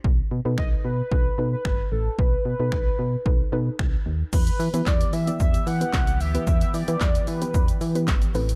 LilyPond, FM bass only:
\new Staff \with { instrumentName = "FM bass" } { \clef bass \time 4/4 \key e \minor \tempo 4 = 112 b,,8 b,16 b,16 b,,8 b,8 b,,8 b,8 g,,8 a,,8 | b,,8 b,16 b,16 b,,8 b,8 b,,8 b,8 c,8 dis,8 | e,8 e16 e16 e,8 e8 e,8 e8 c,8 d,8 | e,8 e16 e16 e,8 e8 e,8 e8 g,,8 a,,8 | }